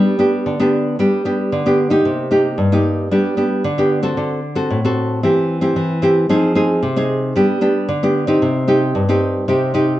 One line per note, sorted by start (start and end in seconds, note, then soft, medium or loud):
0.00 0.43 G3 medium
0.00 0.14 B3 medium
0.00 0.15 D4 medium
0.00 0.15 G4 medium
0.19 0.55 B3 medium
0.19 0.55 D4 medium
0.19 0.55 G4 medium
0.46 0.96 D3 medium
0.60 0.95 B3 medium
0.60 0.95 D4 medium
0.60 0.95 G4 medium
0.99 1.49 G3 medium
0.99 1.21 B3 medium
0.99 1.21 D4 medium
0.99 1.22 G4 medium
1.25 1.61 B3 medium
1.25 1.61 D4 medium
1.25 1.61 G4 medium
1.52 2.03 D3 medium
1.66 1.88 B3 medium
1.66 1.88 D4 medium
1.66 1.88 G4 medium
1.90 2.27 A#3 medium
1.90 2.27 D#4 medium
1.90 2.27 G4 medium
2.05 2.56 C3 medium
2.31 2.67 A#3 medium
2.31 2.67 D#4 medium
2.31 2.67 G4 medium
2.58 3.08 G2 medium
2.72 3.07 A#3 medium
2.72 3.08 D#4 medium
2.72 3.08 G4 medium
3.11 3.62 G3 medium
3.11 3.34 B3 medium
3.11 3.34 D4 medium
3.11 3.34 G4 medium
3.37 3.62 B3 medium
3.37 3.62 D4 medium
3.37 3.63 G4 medium
3.64 4.15 D3 medium
3.78 4.00 B3 medium
3.78 4.00 D4 medium
3.78 4.00 G4 medium
4.03 4.39 C4 medium
4.03 4.39 F#4 medium
4.03 4.39 A4 medium
4.17 4.68 D3 medium
4.55 4.79 C4 medium
4.55 4.79 F#4 medium
4.55 4.79 A4 medium
4.70 5.21 A2 medium
4.85 5.20 C4 medium
4.85 5.20 F#4 medium
4.85 5.20 A4 medium
5.23 5.74 E3 medium
5.23 5.59 C4 medium
5.23 5.59 E4 medium
5.23 5.59 G4 medium
5.61 5.98 C4 medium
5.61 5.98 E4 medium
5.61 5.98 G4 medium
5.76 6.27 E3 medium
6.02 6.25 C4 medium
6.02 6.25 E4 medium
6.02 6.25 G4 medium
6.29 6.80 F3 medium
6.29 6.52 C4 medium
6.29 6.52 D#4 medium
6.29 6.52 G#4 medium
6.55 6.81 C4 medium
6.55 6.81 D#4 medium
6.55 6.81 G#4 medium
6.83 7.33 C3 medium
6.96 7.32 C4 medium
6.96 7.32 D#4 medium
6.96 7.32 G#4 medium
7.36 7.86 G3 medium
7.36 7.58 B3 medium
7.36 7.58 D4 medium
7.36 7.58 G4 medium
7.61 7.87 B3 medium
7.61 7.87 D4 medium
7.61 7.87 G4 medium
7.89 8.39 D3 medium
8.03 8.25 B3 medium
8.03 8.25 D4 medium
8.03 8.25 G4 medium
8.27 8.63 C4 medium
8.27 8.64 D#4 medium
8.27 8.64 G4 medium
8.42 8.92 C3 medium
8.67 9.03 C4 medium
8.67 9.04 D#4 medium
8.67 9.04 G4 medium
8.95 9.45 G2 medium
9.09 9.44 C4 medium
9.09 9.44 D#4 medium
9.09 9.44 G4 medium
9.48 9.98 C3 medium
9.48 9.70 C4 medium
9.48 9.71 D#4 medium
9.48 9.71 G4 medium
9.74 10.00 C4 medium
9.74 10.00 D#4 medium
9.74 10.00 G4 medium